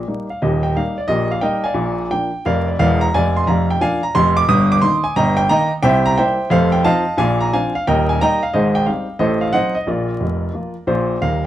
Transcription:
grand piano
0.07 G3 A#3 D#4
0.30 F5
0.42 D#1 D#2 G4 A#4 D#5
0.63 G5
0.77 G3 A#3 D#4 F5
0.98 D5
1.08 A#1 A#2 G4 A#4 D#5
1.31 F5
1.41 G3 A#3 D#4 A#4 D#5 G5
1.64 D5 F5 G#5
1.74 A#1 A#2
2.11 F3 A#3 D4 G5
2.45 F1 F2 A#4 D5 F5
2.68 D5
2.79 E1 E2 A#4 D5 F5
3.01 A#5
3.14 F1 F2 D5 F5 G#5
3.36 C6
3.47 F1 F2 D5 F5 A#5
3.70 G5
3.81 F3 A#3 D4 D5 F5 G#5
4.03 A#5
4.15 F1 F2 C6
4.37 D6
4.48 G1 G2 D#6
4.72 D6
4.81 D#3 A#3 D#4 C6
5.04 G#5
5.16 G1 G2 D#5 G5 A#5
5.37 G5
5.49 D#3 A#3 D#4 D#5 G5 A#5
5.83 C2 C3 C5 E5 G5
6.06 A#5
6.18 G3 A#3 E4 C5 E5 G5
6.50 F1 F2 A4 C5 F5
6.72 G5
6.85 F3 C4 D#4 D#5 F5 A5
7.17 A#1 A#2 D5 F5 G#5
7.41 A#5
7.53 F3 C4 D4 D5 F5 G#5
7.75 F5
7.87 D#1 D#2 A#4 D#5 G5
8.09 G#5
8.21 G3 A#3 D#4 D#5 G5 A#5
8.43 F5
8.53 G#1 G#2 G#4 C5 D#5
8.75 G5
8.86 G3 C4 D#4 F5
9.19 A1 A2 A4 C5 D#5
9.41 F5
9.53 F#3 C4 D#4 C5 D#5 F#5
9.75 D#5
9.87 A#1 A#2 F4 A#4 D5
10.20 F1 F2
10.54 F3 A#3 F4
10.87 A#1 A#2 F4 C5
11.21 D#1 D#2 A#4 F5

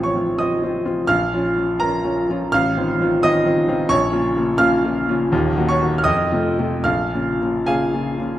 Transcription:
grand piano
Already playing: A1 F3 C4 F4
0.03 C#5 C#6
0.15 F3 C4 F4
0.38 F3 C4 F4 D#5 D#6
0.63 F3 C4 F4
0.85 F3 C4 F4
1.07 A#1 F5 F6
1.34 F3 C#4 F4
1.56 F3 C#4 F4
1.80 F3 C#4 F4 A#4 A#5
2.04 F3 C#4 F4
2.29 F3 C#4 F4
2.52 A1 F5 F6
2.77 D#3 C4 F4
3.00 D#3 C4 F4
3.23 D#3 C4 F4 D#5 D#6
3.46 D#3 C4 F4
3.68 D#3 C4 F4
3.89 A#1 C#5 C#6
4.11 C#3 A#3 F4
4.37 C#3 A#3 F4
4.58 C#3 A#3 F4 F5 F6
4.84 C#3 A#3 F4
5.08 C#3 A#3 F4
5.32 D#1 D#2
5.57 D#3 A#3 F#4
5.69 C#5 C#6
5.82 D#3 A#3 F#4
5.98 F6
6.04 F2 D#5 D#6
6.32 C3 A3 F4
6.59 C3 A3 F4
6.84 A#1 F5 F6
7.13 C#3 A#3 F4
7.41 C#3 A#3 F4
7.66 C#3 A#3 F4 G#4 F5 G#5
7.93 C#3 A#3 F4
8.18 C#3 A#3 F4

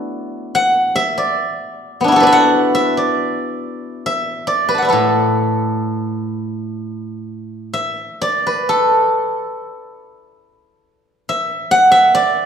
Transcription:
guzheng
Already playing: A3 B3 D4 E4 F#4 A4 B4 D5 E5
0.55 F#5
0.96 E5
1.18 D5
2.01 B3 D4
2.08 E4 F#4
2.16 A4
2.20 B4 D5
2.27 E5
2.32 F#5
2.75 E5
2.97 D5
4.06 E5
4.47 D5
4.69 B4 B5
4.74 F#5 A5
4.82 D5 E5
4.89 A4 B4
4.93 A2
7.74 E5
8.22 D5
8.47 B4
8.69 A4
11.29 E5
11.71 F#5
11.92 E5
12.15 D5

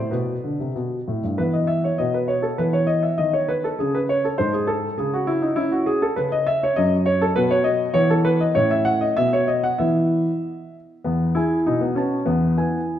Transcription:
grand piano
Already playing: A2 C5
0.11 B2 B4
0.44 D3
0.60 C3
0.75 B2
1.08 A2
1.23 G2
1.38 E3 B3 B4
1.53 D#5
1.67 E5
1.84 C#5
1.98 B2 B3 D#5
2.14 B4
2.28 C#5
2.42 A4
2.58 E3 B3 B4
2.73 C#5
2.87 D#5
3.03 E5
3.18 D#3 D#5
3.33 C#5
3.48 B4
3.64 A4
3.79 C#3 C#4 G#4
3.95 B4
4.09 C#5
4.24 A4
4.38 G#2 D#4 C5
4.53 G#4
4.67 A4
4.98 C#3 C#4 G#4
5.14 F#4
5.27 E4
5.42 D#4
5.56 C#4 E4
5.72 F#4
5.86 G#4
6.02 A4
6.16 C#3 C#4 B4
6.32 D#5
6.47 E5
6.63 C#5
6.76 F#2 C#4 D#5
7.06 C#5
7.21 A4
7.36 B2 B3 B4
7.51 C#5
7.64 D#5
7.94 E3 B3 C#5
8.10 A4
8.25 B4
8.41 D#5
8.55 A2 C#4 C#5
8.71 E5
8.85 F#5
9.01 D#5
9.17 B2 B3 E5
9.33 C#5
9.48 D#5
9.64 F#5
9.78 E3 B3 E4 E5
11.04 E2 B3
11.35 E4 G#4 G#5
11.66 B2 D#4
11.81 B3
11.95 C#4 F#4 B4 A5
12.26 E2 B3
12.57 E4 B4 G#5

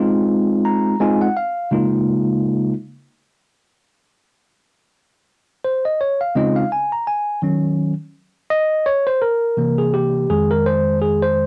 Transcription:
tine electric piano
Already playing: G#3 C4 D#4 F4
0.65 A#5
1.00 G#3 C4 D#4 F4 G#5
1.21 F#5
1.37 F5
1.71 C#3 G#3 A#3 D#4 F4
5.65 C5
5.85 D#5
6.01 C#5
6.21 F5
6.35 C#3 G#3 C4 C#4 D#4 F4 D#5
6.56 F5
6.72 G#5
6.92 A#5
7.07 G#5
7.42 D#3 F#3 C#4
8.50 D#5
8.86 C#5
9.07 C5
9.22 A#4
9.57 C3 E3 A#3
9.78 G#4
9.94 G4
10.29 F2 D#3 G#3 G#4
10.51 A#4
10.66 C5
11.01 G#4
11.22 C5

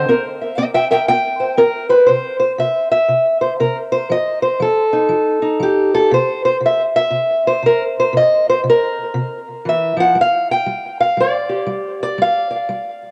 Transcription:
steel-string acoustic guitar
Already playing: C5
0.09 C4 A#4
0.41 E5
0.58 C4 E5 G5
0.74 E5 G5
0.91 A#4 E5 G5
1.08 C4 G5
1.40 C5
1.57 C4 A#4
1.89 B4 C5
2.07 C3 C5
2.40 C5
2.58 C3 E5
2.92 E5
3.08 C3
3.41 C5
3.60 C3 A#4
3.92 C5
4.10 F3 D#5
4.42 C5
4.60 F3 A4
4.93 D#4
5.09 F3
5.42 D#4
5.60 F3 G4
5.95 A4
6.11 C3 C5
6.45 C5
6.60 C3
6.66 E5
6.96 E5
7.10 C3
7.47 C5
7.63 C3 A#4
8.00 C5
8.13 C3
8.17 D#5
8.50 C5
8.64 C3
8.70 A#4
9.14 C3
9.65 E3 E5
9.97 F3 F#5
10.15 G3
10.21 F5
10.51 G5
10.66 G3
11.00 F5
11.17 G3 D5
11.49 G4
11.66 G3
12.03 D5
12.18 G3 F5
12.50 D5
12.69 G3

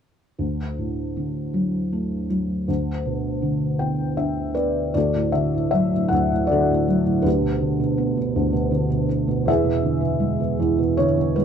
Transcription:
felt piano
0.39 D2
0.78 A2
1.17 D3
1.54 F#3
1.93 A3
2.30 F#3
2.68 D2
3.06 B2
3.42 D3
3.79 B3 G5
4.17 D4 E5
4.54 B3 B4 D5
4.94 D2 F#4 A4 D5
5.14 A2
5.32 D3 E5
5.54 A2
5.71 F#3 E5
5.93 A2
6.08 D2 F#5
6.32 A2
6.47 D3 D5
6.51 F#4 A4
6.70 A2
6.88 F#3
7.05 A2
7.22 D2 B4
7.26 D4 G4
7.42 B2
7.60 D3
7.80 B2
7.98 B3
8.17 B2
8.36 D2
8.53 B2
8.71 D3
8.90 B2
9.09 B3
9.28 B2
9.45 E2 E5
9.50 G#4 B4
9.64 B2
9.83 D3
10.01 B2
10.20 G#3
10.40 B2
10.60 E2
10.79 B2
10.97 D3 C#5
11.17 B2
11.36 G#3 B4

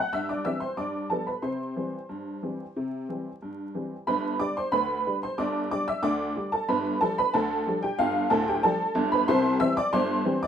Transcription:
honky-tonk piano
Already playing: F#6
0.00 F#5
0.13 G2 E5 E6
0.29 D5 D6
0.45 E3 G3 C4 E5 E6
0.60 C5 C6
0.77 G2 D5 D6
1.10 F3 G3 B3 A4 A5
1.27 B4 B5
1.42 C3 C5 C6
1.76 E3 G3 C4
2.09 G2
2.43 E3 G3 C4
2.76 C3
3.09 E3 G3 C4
3.42 G2
3.75 E3 G3 C4
4.07 G1 G2 B4 B5
4.39 D3 G3 D4 D5 D6
4.57 C5 C6
4.72 D2 D3 B4 B5
5.06 D3 G3 D4
5.23 C5 C6
5.38 G1 G2 D5 D6
5.71 D3 G3 D4 D5 D6
5.88 E5 E6
6.02 D2 D3 D5 D6
6.35 D3 G3 D4
6.52 A4 A5
6.68 G1 G2 B4 B5
7.01 F3 G3 D4 A4 A5
7.18 B4 B5
7.34 D2 D3 A4 A5
7.67 F3 G3 D4
7.82 G4 G5
7.99 G1 G2 F4 F5
8.30 D1 D2 A4 A5
8.48 G4 G5
8.63 F3 G3 D4 A4 A5
8.95 G1 G2
9.12 B4 B5
9.28 C2 C3 C5 C6
9.60 E3 G3 C4 E5 E6
9.77 D5 D6
9.93 G1 G2 C5 C6
10.25 E3 G3 C4
10.43 D5 D6

